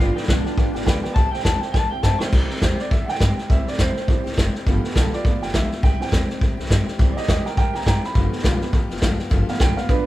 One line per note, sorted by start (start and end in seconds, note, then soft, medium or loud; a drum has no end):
0.00 0.14 G1 medium
0.00 0.16 G2 medium
0.00 0.16 D3 medium
0.00 0.16 F3 medium
0.00 0.15 B3 medium
0.00 0.15 F4 medium
0.00 0.13 G4 medium
0.15 0.27 F3 soft
0.15 0.27 B3 soft
0.15 0.28 D#4 medium
0.15 0.28 F4 soft
0.15 0.27 G4 medium
0.15 0.23 B4 medium
0.15 0.23 D5 medium
0.15 0.23 G5 medium
0.15 snare soft
0.23 snare soft
0.27 0.43 B1 medium
0.27 0.45 G2 medium
0.27 0.45 D3 medium
0.27 0.45 F3 medium
0.27 0.45 B3 medium
0.27 0.85 D4 loud
0.27 0.44 F4 medium
0.27 0.43 G4 medium
0.27 0.38 B4 medium
0.27 0.39 D5 medium
0.27 0.39 G5 medium
0.27 kick medium
0.27 snare loud
0.27 hi-hat pedal medium
0.44 0.54 F3 medium
0.44 0.56 B3 medium
0.44 0.57 F4 medium
0.44 0.57 G4 medium
0.44 0.52 B4 medium
0.44 0.52 D5 medium
0.44 0.53 G5 medium
0.44 muted upright bass stroke medium
0.44 snare soft
0.56 0.72 G1 medium
0.56 0.74 F3 medium
0.56 0.74 B3 medium
0.56 0.73 F4 medium
0.56 0.72 G4 medium
0.56 0.67 B4 medium
0.56 0.68 D5 medium
0.56 0.68 G5 medium
0.56 kick loud
0.56 snare soft
0.73 0.85 G1 medium
0.73 0.85 F3 medium
0.73 0.86 B3 medium
0.73 0.86 F4 medium
0.73 0.86 G4 medium
0.73 0.81 B4 medium
0.73 0.82 D5 medium
0.73 0.82 G5 loud
0.73 snare soft
0.81 0.96 B4 loud
0.81 snare soft
0.86 1.01 D2 medium
0.86 1.03 G2 medium
0.86 1.03 D3 medium
0.86 1.04 F3 medium
0.86 1.03 B3 medium
0.86 1.02 F4 loud
0.86 1.01 G4 medium
0.86 0.96 D5 loud
0.86 0.97 G5 loud
0.86 kick medium
0.86 snare loud
0.86 hi-hat pedal medium
1.02 1.15 F3 medium
1.02 1.16 B3 medium
1.02 1.16 F4 medium
1.02 1.15 G4 medium
1.02 1.10 B4 medium
1.02 1.11 D5 medium
1.02 1.11 G5 loud
1.02 muted upright bass stroke medium
1.02 snare soft
1.14 1.30 C2 medium
1.14 1.32 C3 medium
1.14 1.33 G3 medium
1.14 1.33 C4 medium
1.14 1.33 E4 medium
1.14 1.31 G4 loud
1.14 1.26 C5 medium
1.14 1.26 E5 medium
1.14 1.26 G5 medium
1.14 1.31 A5 loud
1.14 kick loud
1.14 snare soft
1.32 1.44 C4 soft
1.32 1.44 E4 soft
1.32 1.44 G4 medium
1.32 1.40 C5 medium
1.32 1.40 E5 medium
1.32 1.44 G5 loud
1.32 1.40 G5 loud
1.32 snare soft
1.39 snare soft
1.43 1.59 E2 medium
1.43 1.61 C3 medium
1.43 1.62 G3 medium
1.43 1.62 C4 medium
1.43 1.62 E4 medium
1.43 1.60 G4 medium
1.43 1.54 C5 medium
1.43 1.55 E5 medium
1.43 1.61 A5 medium
1.43 1.55 A5 medium
1.43 kick medium
1.43 snare loud
1.43 hi-hat pedal medium
1.61 1.74 C4 soft
1.61 1.75 E4 medium
1.61 1.74 G4 medium
1.61 1.69 C5 medium
1.61 1.69 E5 medium
1.61 1.72 G5 medium
1.61 1.69 A5 medium
1.61 muted upright bass stroke medium
1.61 snare soft
1.72 1.89 C2 loud
1.72 1.91 G3 medium
1.72 1.92 C4 medium
1.72 1.91 E4 medium
1.72 1.84 C5 medium
1.72 1.84 E5 medium
1.72 1.84 G5 medium
1.72 1.90 A5 loud
1.72 kick loud
1.72 snare medium
1.77 1.89 G4 medium
1.90 2.02 C2 medium
1.90 2.03 C4 soft
1.90 2.04 E4 medium
1.90 2.03 G4 medium
1.90 1.98 C5 medium
1.90 1.98 E5 medium
1.90 2.03 G5 loud
1.90 1.99 G5 medium
2.03 2.18 G2 medium
2.03 2.20 C3 medium
2.03 2.21 G3 medium
2.03 2.21 C4 medium
2.03 2.20 E4 medium
2.03 2.18 G4 medium
2.03 2.13 C5 loud
2.03 2.14 E5 medium
2.03 2.14 G5 loud
2.03 2.19 A5 loud
2.03 kick medium
2.03 snare medium
2.03 hi-hat pedal medium
2.19 2.32 C4 soft
2.19 2.33 E4 medium
2.19 2.32 G4 medium
2.19 2.27 C5 medium
2.19 2.28 E5 medium
2.19 2.28 G5 medium
2.19 2.31 C6 loud
2.19 muted upright bass stroke medium
2.19 snare medium
2.32 2.47 C2 medium
2.32 2.49 C3 medium
2.32 3.46 E3 medium
2.32 2.50 G3 medium
2.32 3.46 G3 medium
2.32 2.50 C4 medium
2.32 3.46 C4 medium
2.32 2.49 E4 medium
2.32 2.47 G4 loud
2.32 kick loud
2.32 snare soft
2.32 crash loud
2.48 2.61 C4 soft
2.48 2.62 E4 medium
2.48 2.61 G4 medium
2.48 muted upright bass stroke medium
2.48 snare soft
2.56 snare soft
2.61 2.76 E2 medium
2.61 2.79 C3 medium
2.61 2.79 G3 medium
2.61 2.79 C4 medium
2.61 2.79 E4 medium
2.61 2.77 G4 medium
2.61 2.79 C5 medium
2.61 kick medium
2.61 snare loud
2.61 hi-hat pedal medium
2.78 2.91 C4 soft
2.78 2.92 E4 medium
2.78 2.91 G4 medium
2.78 2.91 D5 medium
2.78 snare soft
2.90 3.06 C2 medium
2.90 3.08 G3 medium
2.90 3.09 C4 medium
2.90 3.08 E4 medium
2.90 3.07 G4 medium
2.90 3.08 E5 medium
2.90 kick loud
2.90 snare soft
3.05 3.18 C2 medium
3.05 3.20 G4 medium
3.05 3.06 F#5 medium
3.05 snare soft
3.09 3.20 C4 soft
3.09 3.21 E4 medium
3.09 3.49 G5 loud
3.15 snare soft
3.20 3.35 G2 medium
3.20 3.37 C3 medium
3.20 3.38 G3 medium
3.20 3.38 C4 medium
3.20 3.38 E4 medium
3.20 3.36 G4 medium
3.20 kick medium
3.20 snare loud
3.20 hi-hat pedal medium
3.37 3.50 C4 soft
3.37 3.50 E4 soft
3.37 3.49 G4 medium
3.37 snare soft
3.49 3.64 C2 medium
3.49 3.67 C3 medium
3.49 4.07 E3 medium
3.49 4.07 G3 medium
3.49 3.67 G3 medium
3.49 4.07 C4 medium
3.49 3.67 C4 medium
3.49 3.67 E4 medium
3.49 3.66 G4 medium
3.49 3.67 E5 medium
3.49 kick loud
3.49 snare soft
3.67 3.79 C4 soft
3.67 3.79 E4 medium
3.67 3.79 G4 medium
3.67 3.79 D5 medium
3.67 muted upright bass stroke medium
3.67 snare soft
3.73 snare soft
3.79 3.93 E2 medium
3.79 3.96 C3 medium
3.79 3.96 G3 medium
3.79 3.96 C4 medium
3.79 3.97 E4 medium
3.79 3.95 G4 loud
3.79 4.64 C5 loud
3.79 kick medium
3.79 snare loud
3.79 hi-hat pedal medium
3.96 4.08 C4 soft
3.96 4.09 E4 medium
3.96 4.08 G4 medium
3.96 muted upright bass stroke medium
3.96 snare soft
4.08 4.23 E3 medium
4.08 4.25 G3 medium
4.08 4.24 G3 soft
4.08 4.24 C4 medium
4.08 4.25 C4 medium
4.08 4.25 E4 medium
4.08 4.23 G4 medium
4.08 kick loud
4.08 snare soft
4.24 4.35 C2 medium
4.24 4.36 C4 medium
4.24 4.37 E4 medium
4.24 4.36 G4 medium
4.24 snare soft
4.32 snare soft
4.36 4.52 F#1 medium
4.36 4.54 C3 medium
4.36 4.54 G3 medium
4.36 4.54 C4 medium
4.36 4.55 E4 loud
4.36 4.53 G4 loud
4.36 kick medium
4.36 snare loud
4.36 hi-hat pedal medium
4.54 4.67 C4 medium
4.54 4.67 E4 medium
4.54 4.66 G4 medium
4.54 snare soft
4.66 4.81 G1 medium
4.66 4.83 G2 medium
4.66 4.84 D3 medium
4.66 5.22 F3 medium
4.66 4.84 F3 loud
4.66 5.23 A3 soft
4.66 5.23 B3 medium
4.66 4.84 B3 medium
4.66 4.84 F4 medium
4.66 4.83 G4 medium
4.66 kick loud
4.66 snare soft
4.84 4.94 F3 medium
4.84 4.95 B3 medium
4.84 4.95 F4 medium
4.84 4.96 G4 medium
4.84 muted upright bass stroke medium
4.84 snare soft
4.90 4.94 G#4 medium
4.90 snare soft
4.95 5.10 B1 medium
4.95 5.12 G2 medium
4.95 5.12 D3 medium
4.95 5.12 F3 medium
4.95 5.13 B3 medium
4.95 5.12 F4 medium
4.95 5.11 G4 loud
4.95 5.12 A4 medium
4.95 kick medium
4.95 snare loud
4.95 hi-hat pedal medium
5.12 5.22 F3 soft
5.12 5.24 B3 soft
5.12 5.25 F4 medium
5.12 5.24 G4 medium
5.12 5.41 D5 medium
5.12 snare soft
5.23 5.41 F3 medium
5.23 5.40 F3 medium
5.23 5.40 A3 soft
5.23 5.42 B3 medium
5.23 5.40 B3 medium
5.23 5.41 F4 medium
5.23 5.40 G4 medium
5.23 kick loud
5.23 snare soft
5.41 5.52 G1 medium
5.41 5.53 F3 medium
5.41 5.54 B3 medium
5.41 5.54 F4 medium
5.41 5.53 G4 medium
5.41 5.54 G5 medium
5.41 snare soft
5.48 snare soft
5.53 5.68 D2 medium
5.53 5.71 G2 medium
5.53 5.71 D3 medium
5.53 5.71 F3 medium
5.53 5.71 B3 medium
5.53 5.71 F4 medium
5.53 5.69 G4 medium
5.53 5.82 E5 medium
5.53 kick medium
5.53 snare loud
5.53 hi-hat pedal medium
5.70 5.83 F3 soft
5.70 5.84 B3 soft
5.70 5.83 F4 medium
5.70 5.83 G4 medium
5.70 muted upright bass stroke medium
5.70 snare soft
5.83 5.98 C2 medium
5.83 6.00 C3 medium
5.83 6.00 G3 medium
5.83 6.01 C4 medium
5.83 6.00 E4 medium
5.83 5.98 G4 loud
5.83 6.00 G5 medium
5.83 kick loud
5.83 snare soft
5.99 6.97 E3 medium
5.99 6.98 G3 soft
5.99 6.98 C4 medium
5.99 6.12 C4 soft
5.99 6.12 E4 soft
5.99 6.12 G4 soft
5.99 6.86 G5 medium
5.99 muted upright bass stroke medium
5.99 snare soft
6.07 snare soft
6.11 6.26 E2 medium
6.11 6.29 C3 medium
6.11 6.29 G3 medium
6.11 6.29 C4 medium
6.11 6.29 E4 medium
6.11 6.27 G4 loud
6.11 kick medium
6.11 snare loud
6.11 hi-hat pedal loud
6.29 6.40 C4 medium
6.29 6.41 E4 medium
6.29 6.41 G4 medium
6.29 snare soft
6.40 6.56 C2 medium
6.40 6.57 G3 medium
6.40 6.58 C4 medium
6.40 6.58 E4 medium
6.40 6.56 G4 medium
6.40 kick loud
6.40 snare soft
6.57 6.68 C2 medium
6.57 6.70 C4 medium
6.57 6.71 E4 medium
6.57 6.70 G4 medium
6.57 snare soft
6.65 snare soft
6.70 6.85 G2 medium
6.70 6.87 C3 medium
6.70 6.87 G3 medium
6.70 6.88 C4 medium
6.70 6.87 E4 loud
6.70 6.85 G4 loud
6.70 kick medium
6.70 snare loud
6.70 hi-hat pedal medium
6.86 6.98 C4 soft
6.86 6.99 E4 medium
6.86 6.99 G4 medium
6.86 muted upright bass stroke medium
6.86 snare soft
6.99 7.14 C2 medium
6.99 7.16 C3 loud
6.99 7.20 E3 medium
6.99 7.16 G3 medium
6.99 7.20 G3 soft
6.99 7.16 C4 medium
6.99 7.20 C4 medium
6.99 7.16 E4 loud
6.99 7.14 G4 loud
6.99 kick loud
6.99 snare soft
7.12 7.28 G4 medium
7.12 7.14 D5 medium
7.16 7.28 C4 soft
7.16 7.29 E4 soft
7.16 7.27 G4 medium
7.16 7.28 D#5 medium
7.16 muted upright bass stroke medium
7.16 snare soft
7.22 snare soft
7.28 7.43 E2 medium
7.28 7.45 C3 medium
7.28 7.45 G3 medium
7.28 7.46 C4 medium
7.28 7.45 E4 medium
7.28 7.44 G4 medium
7.28 7.43 G4 medium
7.28 7.45 D#5 medium
7.28 kick medium
7.28 snare loud
7.28 hi-hat pedal medium
7.45 7.56 C4 soft
7.45 7.58 E4 medium
7.45 7.57 G4 medium
7.45 7.56 A#4 medium
7.45 7.56 G5 medium
7.45 muted upright bass stroke medium
7.45 snare soft
7.57 7.72 C2 loud
7.57 7.74 G3 medium
7.57 7.74 C4 medium
7.57 7.74 E4 medium
7.57 7.72 G4 medium
7.57 7.73 A#4 medium
7.57 7.73 G5 loud
7.57 kick loud
7.57 snare soft
7.73 7.84 C2 medium
7.73 7.86 C4 soft
7.73 7.87 E4 soft
7.73 7.86 G4 medium
7.73 7.86 G5 medium
7.73 7.86 A#5 medium
7.73 snare soft
7.81 snare soft
7.86 8.01 G2 medium
7.86 8.03 C3 medium
7.86 8.04 G3 medium
7.86 8.04 C4 medium
7.86 8.03 E4 medium
7.86 8.01 G4 medium
7.86 8.03 G5 medium
7.86 8.04 A#5 medium
7.86 kick medium
7.86 snare loud
7.86 hi-hat pedal medium
8.02 8.16 C4 soft
8.02 8.16 E4 medium
8.02 8.15 G4 medium
8.02 8.89 B5 medium
8.02 muted upright bass stroke medium
8.02 snare soft
8.14 8.30 G1 medium
8.14 8.32 G2 medium
8.14 8.32 D3 medium
8.14 8.33 F3 medium
8.14 8.59 F3 medium
8.14 8.60 A3 medium
8.14 8.32 B3 medium
8.14 8.60 B3 medium
8.14 8.31 F4 medium
8.14 8.30 G4 medium
8.14 kick loud
8.14 snare soft
8.31 8.44 F3 soft
8.31 8.44 B3 soft
8.31 8.44 F4 medium
8.31 8.44 G4 medium
8.31 snare soft
8.39 snare soft
8.44 8.59 B1 medium
8.44 8.61 G2 loud
8.44 8.61 D3 loud
8.44 8.62 F3 medium
8.44 8.62 B3 loud
8.44 8.60 F4 loud
8.44 8.59 G4 loud
8.44 kick medium
8.44 snare loud
8.44 hi-hat pedal medium
8.60 8.73 F3 soft
8.60 8.71 F3 medium
8.60 8.73 A3 soft
8.60 8.73 B3 medium
8.60 8.72 B3 medium
8.60 8.74 F4 medium
8.60 8.73 G4 medium
8.60 muted upright bass stroke medium
8.60 snare soft
8.72 8.88 G1 loud
8.72 8.90 F3 medium
8.72 8.91 B3 medium
8.72 8.90 F4 medium
8.72 8.88 G4 medium
8.72 kick loud
8.72 snare soft
8.89 9.01 G1 medium
8.89 9.01 F3 medium
8.89 9.02 B3 medium
8.89 9.02 F4 medium
8.89 9.02 G4 medium
8.89 snare soft
8.96 snare soft
9.01 9.17 D2 loud
9.01 9.19 G2 medium
9.01 9.19 D3 medium
9.01 9.19 F3 medium
9.01 9.19 B3 loud
9.01 9.18 F4 loud
9.01 9.17 G4 loud
9.01 kick medium
9.01 snare loud
9.01 hi-hat pedal medium
9.18 9.29 F3 soft
9.18 9.30 B3 medium
9.18 9.30 F4 medium
9.18 9.31 G4 medium
9.18 snare soft
9.30 9.46 G1 loud
9.30 9.48 G2 medium
9.30 9.48 D3 loud
9.30 9.48 F3 loud
9.30 9.48 B3 loud
9.30 9.47 F4 loud
9.30 9.45 G4 loud
9.30 kick loud
9.30 snare soft
9.47 10.06 F3 medium
9.47 9.59 F3 soft
9.47 10.06 A3 soft
9.47 9.59 B3 medium
9.47 10.06 B3 medium
9.47 9.60 F4 soft
9.47 9.60 G4 medium
9.47 9.61 F5 medium
9.47 snare soft
9.54 snare soft
9.59 9.75 B1 medium
9.59 9.77 G2 medium
9.59 9.77 D3 medium
9.59 9.78 F3 medium
9.59 9.77 B3 medium
9.59 9.76 F4 medium
9.59 9.75 G4 loud
9.59 9.77 G5 loud
9.59 kick loud
9.59 snare loud
9.59 hi-hat pedal loud
9.76 9.87 F3 soft
9.76 9.88 B3 medium
9.76 9.89 F4 medium
9.76 9.89 G4 medium
9.76 9.89 F5 medium
9.76 muted upright bass stroke medium
9.76 snare soft
9.88 10.06 F3 medium
9.88 10.06 B3 medium
9.88 10.06 D4 medium
9.88 10.05 F4 medium
9.88 10.04 G4 medium
9.88 10.06 B4 loud
9.88 kick loud
9.88 snare soft